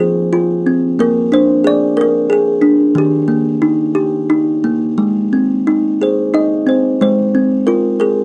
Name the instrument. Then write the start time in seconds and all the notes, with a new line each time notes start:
kalimba
Already playing: F3 C4 F4 C5
0.00 G#4
0.33 F4
0.67 C4
0.99 A#3 A#4
1.32 D4 C5
1.64 G#4 D5
1.97 A#4
2.01 A#4
2.30 G#4
2.62 D4
2.95 D#3 G4
3.28 A#3
3.62 D#4
3.95 G4
4.30 D#4
4.64 A#3
4.98 G#3
5.33 C4
5.67 D#4
6.01 G#4 C5
6.34 D#4 D#5
6.67 C4 C5
7.01 G#3 C5
7.35 C4
7.67 F4 A#4
8.00 G#4 A#4